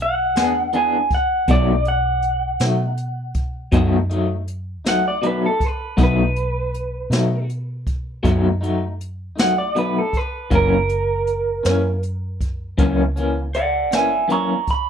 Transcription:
Already playing: B1
0.02 F#5
0.36 E2 B3 D4 G#4, snare, closed hi-hat
0.73 E3 B3 D4 G#4 G#5, closed hi-hat
1.11 F#5, kick, closed hi-hat
1.48 B1 B2 F#3 A3 D#4 D5, kick, closed hi-hat
1.85 F#5, closed hi-hat
2.22 closed hi-hat
2.60 B2 F#3 A3 D#4, snare, closed hi-hat
2.97 closed hi-hat
3.34 kick, closed hi-hat
3.72 F#2 B2 F#3 A3 D#4, kick, closed hi-hat
4.10 F#3 A3 D#4, closed hi-hat
4.48 closed hi-hat
4.85 B1 F#3 A3 D#4 F#5, snare, closed hi-hat
5.08 D5
5.22 B2 F#3 A3 D#4, closed hi-hat
5.27 B4
5.46 A4
5.60 kick, closed hi-hat
5.66 B4
5.97 B1 B2 F#3 A3 D#4, kick, closed hi-hat
6.03 B4
6.36 closed hi-hat
6.74 closed hi-hat
7.10 B2 F#3 A3 D#4, snare, closed hi-hat
7.49 closed hi-hat
7.87 kick, closed hi-hat
8.23 F#2 B2 F#3 A3 D#4, kick, closed hi-hat
8.61 F#3 A3 D#4, closed hi-hat
9.01 closed hi-hat
9.36 B1 F#3 A3 D#4, snare, closed hi-hat
9.40 F#5
9.58 D5
9.75 B2 F#3 A3 D#4 B4, closed hi-hat
9.98 A4
10.13 B4, kick, closed hi-hat
10.50 F#1 F#2 E3 A#3 C#4, kick, closed hi-hat
10.55 A#4
10.89 closed hi-hat
11.27 closed hi-hat
11.63 F#2 E3 A#3 C#4, snare, closed hi-hat
12.03 closed hi-hat
12.41 kick, closed hi-hat
12.78 C#2 F#2 E3 A#3 C#4, kick, closed hi-hat
13.16 E3 A#3 C#4, closed hi-hat
13.54 D5 F#5, closed hi-hat
13.91 F#1 E3 A#3 C#4 E5, snare, closed hi-hat
13.95 G#5
14.28 F#2 E3 A#3 C#4 A#5, closed hi-hat
14.32 C#6
14.67 B5, kick, closed hi-hat

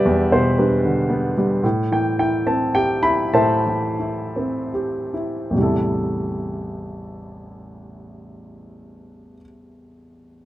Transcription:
Already playing: E2 B2 D3 G3 B3 G4 B4 D5 E5 G5
0.05 E2
0.32 B2 C5
0.58 G3 D4 G4 B4
0.85 D3
1.10 B3
1.38 G3
1.64 A2
1.92 E3 G5
2.19 E4 G5
2.47 C4 A5
2.75 G4 G5
3.03 E4 B5
3.33 A2 C5 E5 A5
3.66 E3
4.00 E4
4.36 C4
4.74 G4
5.14 E4
5.50 A1 E2
5.55 C3 G3
5.60 E4 A4

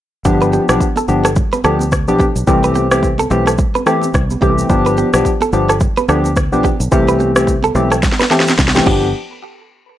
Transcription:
0.25 G1 F3 B3 D4 G4, kick, low conga, shaker
0.41 B4, shaker
0.53 G4, high conga, shaker
0.69 B1 F3 B3 D4 G4, cross-stick, shaker
0.80 kick, shaker
0.96 A4, high conga, shaker
1.08 G1 F3 B3 D4 G4, low conga, shaker
1.25 A4, cross-stick, shaker
1.36 kick, low conga, shaker
1.53 B4, high conga, shaker
1.64 D2 F3 B3 D4 G4 A4, cross-stick, shaker
1.79 high conga, shaker
1.92 kick, cross-stick, shaker
2.08 B1 F3 B3 D4 G4, high conga, shaker
2.19 G4, kick, high conga, shaker
2.36 B1, shaker
2.47 C2 E3 A3 C4 G4, kick, low conga, shaker
2.64 B4, shaker
2.75 G4, high conga, shaker
2.91 E3 A3 C4 G4, cross-stick, shaker
3.03 kick, shaker
3.18 A4, high conga, shaker
3.30 B1 E3 A3 C4 G4, low conga, shaker
3.47 A4, cross-stick, shaker
3.58 kick, low conga, shaker
3.75 B4, high conga, shaker
3.86 E3 A3 C4 G4 A4, cross-stick, shaker
4.02 high conga, shaker
4.14 C2, kick, cross-stick, shaker
4.30 high conga, shaker
4.41 C2 E3 A3 C4 G4, kick, high conga, shaker
4.58 shaker
4.69 G1 F3 B3 D4 G4, kick, low conga, shaker
4.86 B4, shaker
4.97 G4, high conga, shaker
5.13 B1 F3 B3 D4 G4, cross-stick, shaker
5.25 kick, shaker
5.41 A4, high conga, shaker
5.53 G1 F3 B3 D4 G4, low conga, shaker
5.69 A4, cross-stick, shaker
5.80 kick, low conga, shaker
5.97 B4, high conga, shaker
6.08 D2 F3 B3 D4 G4 A4, cross-stick, shaker
6.24 high conga, shaker
6.36 kick, cross-stick, shaker
6.52 B1 F3 B3 D4 G4, high conga, shaker
6.63 G4, kick, high conga, shaker
6.80 B1, shaker
6.91 C2 E3 A3 C4 G4, kick, low conga, shaker
7.08 B4, shaker
7.20 G4, high conga, shaker
7.35 E3 A3 C4 G4, cross-stick, shaker
7.47 kick, shaker
7.63 A4, high conga, shaker
7.75 B1 E3 A3 C4 G4, high conga, low conga, shaker
7.92 A4, cross-stick, shaker
8.03 kick, snare, low conga, shaker
8.12 snare
8.20 B4, snare, high conga, shaker
8.30 E3 A3 C4 G4 A4, snare, shaker
8.40 snare
8.46 snare, high conga, shaker
8.58 C2, kick, snare, shaker
8.68 snare
8.74 E3 A3 C4 G4, snare, high conga, shaker
8.86 G1 F3 B3 D4 G4, kick, crash, high conga

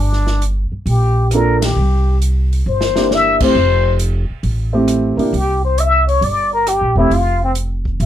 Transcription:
Already playing: G1
0.00 D4
0.13 snare
0.27 snare
0.42 closed hi-hat
0.72 muted upright bass stroke
0.86 A#1 G4, open hi-hat
1.31 A#3 D4 F4 A#4, cross-stick, closed hi-hat
1.36 A4
1.62 G4, snare, ride
1.76 C2
2.22 closed hi-hat
2.53 open hi-hat
2.66 G1 C5
2.81 snare
2.96 A#3 D4 E4 G4, snare
3.11 E5, snare
3.40 A3 C4 E4 G4 C5, kick, crash
3.55 F1
3.99 closed hi-hat
4.30 muted upright bass stroke
4.43 A1, open hi-hat
4.73 A3 C4 E4 G4
4.88 cross-stick, closed hi-hat
5.17 C#2 A#3 D4 E4 G4, open hi-hat
5.33 C2, open hi-hat
5.37 G4
5.65 C5
5.78 E5, closed hi-hat
6.08 C#5, open hi-hat
6.21 G1 D5, open hi-hat
6.53 A#4
6.67 G4, cross-stick, closed hi-hat
6.81 A#1
6.96 E1 A3 C4 E4 G4
7.10 F1 F4, open hi-hat
7.44 C4
7.55 closed hi-hat
7.85 kick
8.00 A1 E5, open hi-hat

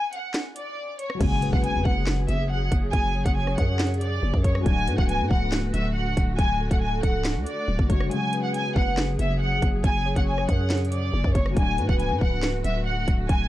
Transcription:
0.13 F#5, closed hi-hat
0.34 snare, clap, closed hi-hat
0.56 D5, closed hi-hat
0.99 C#5, closed hi-hat
1.10 cross-stick
1.15 F#3 G#3
1.21 F#1 C#3 F#3 G#4 G#5, kick, closed hi-hat, crash, impact
1.26 F#4
1.42 B4, closed hi-hat
1.53 F#1 F#5, kick
1.64 G#5, closed hi-hat
1.75 F#2
1.85 F#1 F#5, kick
2.07 snare, clap, closed hi-hat
2.29 F#1 E5, closed hi-hat
2.50 F#5
2.72 F#1, kick, closed hi-hat
2.93 F#1 G#5, kick, closed hi-hat
3.15 C#5
3.26 F#1 F#5, kick, closed hi-hat
3.37 G#5
3.47 cross-stick
3.58 F#2 F#5, kick, closed hi-hat
3.79 snare, clap, closed hi-hat
3.87 closed hi-hat
3.94 closed hi-hat
4.01 D5, closed hi-hat
4.23 F#1
4.34 F#2, kick
4.44 C#5, kick, closed hi-hat
4.55 cross-stick
4.60 F#3 A3
4.66 D1 D3 A3 D4 F#4 G#5, kick, closed hi-hat
4.72 F#4
4.87 A2 B4, closed hi-hat
4.98 C#1 F#5, kick
5.09 G#5, closed hi-hat
5.20 A2
5.30 C#1 F#5, kick
5.52 snare, clap, closed hi-hat
5.74 D1 E5, closed hi-hat
5.95 F#5
6.17 D1, kick, closed hi-hat
6.39 D1 G#5, kick, closed hi-hat
6.60 A4
6.71 D1 F#5, kick, closed hi-hat
6.82 G#5
7.03 C#1 F#5, kick, closed hi-hat
7.24 snare, clap, closed hi-hat
7.36 D2
7.46 D5, closed hi-hat
7.68 D1
7.79 F#1, kick
7.87 F#3 A3 D4 C#5, kick, closed hi-hat
7.93 F#4
8.00 cross-stick
8.05 F#3 G#3
8.11 C#3 F#3 G#4 G#5, closed hi-hat
8.17 F#4
8.33 B4, closed hi-hat
8.43 F#5
8.54 G#5, closed hi-hat
8.76 F#1 F#5, kick
8.97 snare, clap, closed hi-hat
9.19 F#1 E5, closed hi-hat
9.41 F#5
9.62 F#1, kick, closed hi-hat
9.84 F#1 G#5, kick, closed hi-hat
10.05 C#5
10.16 F#1 F#5, kick, closed hi-hat
10.27 G#5
10.38 cross-stick
10.49 F#2 F#5, kick, closed hi-hat
10.70 snare, clap, closed hi-hat
10.77 closed hi-hat
10.85 closed hi-hat
10.92 D5, closed hi-hat
11.13 F#1
11.24 F#2, kick
11.35 F#1 C#5, kick, closed hi-hat
11.46 cross-stick
11.51 F#3 A3
11.56 D1 D3 A3 D4 F#4 G#5, kick, closed hi-hat
11.62 F#4
11.78 A2 B4, closed hi-hat
11.89 C#1 F#5, kick
12.00 G#5, closed hi-hat
12.11 A2
12.21 C#1 F#5, kick
12.42 snare, clap, closed hi-hat
12.64 D1 E5, closed hi-hat
12.85 F#5
13.08 D1, kick, closed hi-hat
13.29 D1 G#5, kick, closed hi-hat

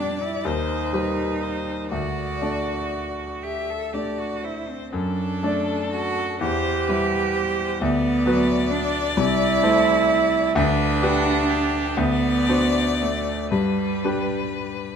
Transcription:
Already playing: F2 G3 G4 D5
0.00 D4
0.22 E4
0.45 D#2 D#4 C5
0.93 G3 G4 B4 C5
1.43 C5
1.91 D2 F#4 D5
2.41 A3 D4 D5
3.43 G4 E5
3.70 A4
3.93 A3 D4 G4 D5
4.19 F#4
4.44 E4 C5
4.70 C4
4.93 F#2 D4 A4
5.43 A3 D4 D5
5.91 F#4
6.41 E2 G4 C5
6.89 G3 E4 B4 C5
7.36 C5
7.81 D2 B3 D5
8.26 F#3 F#4 B4
8.72 D4
9.17 C2 E4
9.63 A3 E4 C5
10.55 D2 D4 B4
11.02 D4 F#4 G4 B4
11.50 G4
11.97 D2 B3 D5
12.48 D4 F#4 C5
13.01 A3
13.52 G2 G3 B4
14.04 D4 G4 B4

